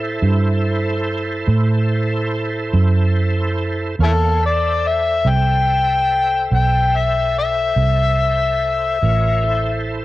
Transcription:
0.00 0.18 A2 medium
0.00 3.95 E4 medium
0.00 3.96 A4 medium
0.00 3.96 C5 medium
0.22 1.44 G2 medium
1.48 2.70 A2 medium
2.73 3.96 F#2 medium
3.99 5.21 E2 medium
3.99 4.42 A#3 medium
3.99 4.42 C#5 medium
3.99 4.42 F5 medium
4.03 4.12 E4 medium
4.03 4.42 A4 medium
4.43 8.99 A4 medium
4.43 8.99 C5 medium
4.43 4.89 D5 medium
4.43 8.99 E5 medium
4.87 5.31 E5 medium
5.25 6.47 C2 medium
5.29 6.49 G5 medium
6.51 7.73 B1 medium
6.51 6.98 G5 medium
6.97 7.35 E5 medium
7.39 9.84 E5 medium
7.76 8.98 C2 medium
9.02 10.05 A1 medium
9.02 9.44 F4 medium
9.02 9.44 A#4 medium
9.02 9.44 C#5 medium
9.43 10.05 E4 medium
9.43 10.05 A4 medium
9.43 10.05 C5 medium

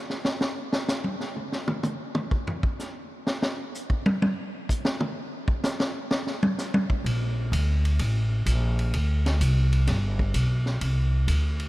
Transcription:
0.10 snare medium
0.25 snare loud
0.41 snare loud
0.72 snare loud
0.88 snare loud
0.88 hi-hat pedal medium
1.04 high tom medium
1.20 snare soft
1.36 mid tom soft
1.52 snare medium
1.68 mid tom loud
1.83 hi-hat pedal medium
1.83 mid tom medium
2.15 mid tom loud
2.31 kick medium
2.47 floor tom loud
2.63 kick medium
2.79 snare soft
2.79 hi-hat pedal medium
3.27 snare loud
3.42 snare loud
3.75 hi-hat pedal medium
3.90 kick medium
4.06 high tom loud
4.22 high tom loud
4.69 kick medium
4.69 hi-hat pedal medium
4.85 snare loud
5.00 mid tom loud
5.48 kick medium
5.64 snare loud
5.64 hi-hat pedal medium
5.80 snare loud
6.11 snare loud
6.27 snare medium
6.43 high tom loud
6.58 snare soft
6.58 hi-hat pedal medium
6.74 high tom loud
6.90 kick medium
7.04 7.51 A#1 medium
7.04 ride medium
7.52 7.98 D2 loud
7.52 hi-hat pedal medium
7.52 ride medium
7.85 ride medium
7.99 8.45 A1 loud
7.99 ride medium
8.46 8.92 A#1 medium
8.46 hi-hat pedal medium
8.46 ride medium
8.79 ride medium
8.94 9.40 D2 loud
8.94 ride medium
9.26 snare medium
9.26 ride medium
9.41 9.86 C2 loud
9.41 hi-hat pedal medium
9.41 ride medium
9.73 ride medium
9.87 10.33 G1 loud
9.87 snare soft
9.87 ride medium
10.19 kick medium
10.34 10.80 B1 medium
10.34 hi-hat pedal medium
10.34 ride medium
10.66 snare soft
10.81 11.27 C2 medium
10.81 ride medium
11.28 11.69 D2 loud
11.28 hi-hat pedal medium
11.28 ride medium
11.60 ride medium

